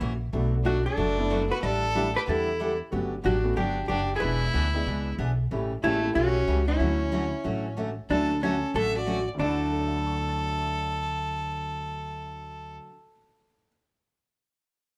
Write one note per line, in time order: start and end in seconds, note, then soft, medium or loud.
0.00 0.28 A#1 medium
0.00 0.12 C#3 medium
0.00 0.12 E3 medium
0.00 0.12 A#3 medium
0.00 0.12 C#4 medium
0.00 0.12 F#4 medium
0.33 0.85 B1 medium
0.33 0.54 B2 medium
0.33 0.54 F#3 soft
0.33 0.54 A3 medium
0.33 0.82 A3 medium
0.33 0.82 B3 medium
0.33 0.54 D4 medium
0.33 0.82 D4 medium
0.33 0.54 F#4 medium
0.33 0.82 F#4 medium
0.64 0.76 B2 medium
0.64 0.77 F#3 medium
0.64 0.77 A3 medium
0.64 0.84 D4 medium
0.64 0.77 D4 medium
0.64 0.77 F#4 medium
0.64 0.85 F#4 medium
0.85 1.46 D4 medium
0.85 1.53 A4 medium
0.97 1.49 F#1 medium
0.97 1.19 B2 medium
0.97 1.19 F#3 medium
0.97 1.19 A3 medium
0.97 1.19 D4 medium
0.97 1.19 F#4 medium
1.17 1.60 A3 medium
1.17 1.60 B3 medium
1.17 1.60 D4 medium
1.17 1.61 E4 medium
1.30 1.42 B2 medium
1.30 1.42 F#3 medium
1.30 1.42 A3 medium
1.30 1.42 D4 medium
1.30 1.42 F#4 medium
1.50 1.63 F#4 medium
1.50 1.63 B4 medium
1.62 2.15 A1 medium
1.62 1.84 D3 medium
1.62 1.84 G3 medium
1.62 1.84 D4 medium
1.62 1.84 E4 medium
1.62 2.15 A4 medium
1.62 1.84 A4 medium
1.62 2.16 D5 loud
1.94 2.06 D3 medium
1.94 2.06 G3 medium
1.94 2.43 A3 medium
1.94 2.44 D4 medium
1.94 2.06 D4 medium
1.94 2.07 E4 medium
1.94 2.44 E4 medium
1.94 2.44 G4 medium
1.94 2.07 A4 medium
2.16 2.27 G4 medium
2.16 2.28 B4 medium
2.27 2.80 E2 medium
2.27 2.48 D3 medium
2.27 2.48 G3 medium
2.27 2.48 D4 medium
2.27 2.77 E4 medium
2.27 2.49 E4 medium
2.27 2.49 A4 medium
2.27 2.77 A4 medium
2.59 2.71 D3 medium
2.59 2.71 G3 medium
2.59 2.71 D4 medium
2.59 2.71 E4 medium
2.59 2.72 A4 medium
2.91 3.18 G1 medium
2.91 3.13 D3 medium
2.91 3.13 F#3 medium
2.91 3.10 A3 medium
2.91 3.10 B3 medium
2.91 3.13 B3 medium
2.91 3.10 C#4 medium
2.91 3.13 D4 medium
2.91 3.11 F#4 medium
2.91 3.13 G4 medium
3.23 3.52 A1 medium
3.23 3.35 D3 medium
3.23 3.36 F#3 medium
3.23 3.36 B3 medium
3.23 3.54 D4 medium
3.23 3.36 D4 medium
3.23 3.57 F#4 medium
3.23 3.36 G4 medium
3.44 3.55 A3 medium
3.44 3.55 B3 medium
3.44 3.56 C#4 medium
3.44 3.56 F#4 medium
3.55 3.84 G1 medium
3.55 3.77 D3 medium
3.55 3.78 F#3 medium
3.55 3.78 B3 medium
3.55 3.86 D4 medium
3.55 3.78 D4 medium
3.55 3.78 G4 medium
3.55 3.87 G4 medium
3.88 4.17 F#1 medium
3.88 4.00 D3 medium
3.88 4.00 F#3 medium
3.88 4.00 B3 medium
3.88 4.14 D4 medium
3.88 4.01 D4 medium
3.88 4.16 G4 medium
3.88 4.01 G4 medium
4.15 4.18 E4 medium
4.15 5.13 E4 medium
4.15 4.22 G#4 medium
4.20 4.48 E1 medium
4.20 4.42 E3 medium
4.20 4.70 G#3 medium
4.20 4.42 B3 medium
4.20 4.71 B3 medium
4.20 4.43 D4 medium
4.20 4.71 D4 medium
4.20 4.71 E4 medium
4.20 4.43 G#4 medium
4.20 5.14 B4 loud
4.53 4.82 D2 medium
4.53 4.65 E3 medium
4.53 4.65 B3 medium
4.53 4.65 D4 medium
4.53 4.65 G#4 medium
4.74 5.16 G#3 medium
4.74 5.16 B3 medium
4.74 5.17 D4 medium
4.74 5.17 E4 medium
4.86 5.14 C#2 medium
4.86 5.07 E3 medium
4.86 5.07 B3 medium
4.86 5.08 D4 medium
4.86 5.08 G#4 medium
5.18 5.46 B1 medium
5.18 5.30 E3 medium
5.18 5.30 B3 medium
5.18 5.30 D4 medium
5.18 5.30 G#4 medium
5.51 5.77 A1 medium
5.51 5.72 C#3 soft
5.51 5.72 E3 medium
5.51 5.69 G3 medium
5.51 5.72 A3 medium
5.51 5.70 A3 medium
5.51 5.72 C#4 medium
5.51 5.70 C#4 medium
5.51 5.70 E4 medium
5.51 5.72 G4 medium
5.83 6.11 A1 medium
5.83 5.94 C#3 medium
5.83 5.95 E3 medium
5.83 6.02 G#3 medium
5.83 6.13 A3 medium
5.83 5.95 A3 medium
5.83 6.02 A#3 medium
5.83 5.95 C#4 medium
5.83 6.02 D4 medium
5.83 6.14 E4 medium
5.83 6.02 F4 medium
5.83 5.95 G4 medium
6.03 6.32 G3 medium
6.03 6.32 A3 medium
6.03 6.32 C#4 medium
6.03 6.32 E4 medium
6.15 6.43 B1 medium
6.15 6.37 C#3 medium
6.15 6.37 E3 medium
6.15 6.37 A3 medium
6.15 6.65 C#4 medium
6.15 6.37 C#4 medium
6.15 6.68 F#4 loud
6.15 6.37 G4 medium
6.47 6.75 C#2 medium
6.47 6.59 C#3 medium
6.47 6.59 E3 medium
6.47 6.59 A3 medium
6.47 6.59 C#4 medium
6.47 6.60 G4 medium
6.68 7.73 C#4 medium
6.68 7.73 E4 medium
6.80 7.32 D2 medium
6.80 7.01 D3 medium
6.80 7.29 D3 medium
6.80 7.29 F#3 medium
6.80 7.01 F#3 medium
6.80 7.01 A3 medium
6.80 7.01 C#4 medium
6.80 7.29 C#4 medium
6.80 7.30 E4 medium
6.80 7.01 F#4 medium
7.12 7.24 D3 medium
7.12 7.24 F#3 medium
7.12 7.24 A3 medium
7.12 7.24 C#4 medium
7.12 7.24 F#4 medium
7.44 7.97 A1 medium
7.44 7.65 D3 medium
7.44 7.66 F#3 medium
7.44 7.66 A3 medium
7.44 7.66 C#4 medium
7.44 7.66 F#4 medium
7.77 7.88 D3 medium
7.77 7.89 F#3 medium
7.77 7.89 A3 medium
7.77 7.89 C#4 medium
7.77 7.89 F#4 medium
8.10 8.62 D2 medium
8.10 8.31 D3 medium
8.10 8.59 F#3 medium
8.10 8.31 F#3 medium
8.10 8.31 A3 medium
8.10 8.31 C#4 medium
8.10 8.59 D4 medium
8.10 8.43 D4 medium
8.10 8.59 E4 medium
8.10 8.31 F#4 medium
8.10 8.40 A4 medium
8.10 8.59 C#5 medium
8.43 8.54 D3 medium
8.43 8.54 F#3 medium
8.43 8.54 A3 medium
8.43 8.76 C#4 medium
8.43 8.54 C#4 medium
8.43 8.54 F#4 medium
8.43 8.73 A4 medium
8.74 9.26 A1 medium
8.74 8.96 D3 medium
8.74 8.96 F#3 medium
8.74 8.96 A3 medium
8.74 8.96 C#4 medium
8.74 8.96 F#4 medium
8.74 8.96 A4 loud
8.74 8.98 E5 medium
8.96 9.28 F#4 medium
8.96 9.29 D5 medium
9.06 9.18 D3 medium
9.06 9.18 F#3 medium
9.06 9.18 A3 medium
9.06 9.18 C#4 medium
9.06 9.19 F#4 medium
9.34 12.76 D2 medium
9.34 12.79 D3 medium
9.39 12.77 D2 medium
9.39 12.89 D3 medium
9.39 12.89 F#3 medium
9.39 12.82 F#3 medium
9.39 12.90 A3 medium
9.39 12.78 D4 medium
9.39 12.91 F#4 medium
9.39 12.75 A4 medium
9.43 12.85 D4 medium
9.43 12.88 E4 medium
9.72 13.10 A4 soft
9.79 13.17 C#5 soft
9.88 13.26 E5 soft
9.97 13.35 A5 soft
10.07 13.45 C#6 soft
10.17 13.55 E6 soft
10.29 13.67 A6 soft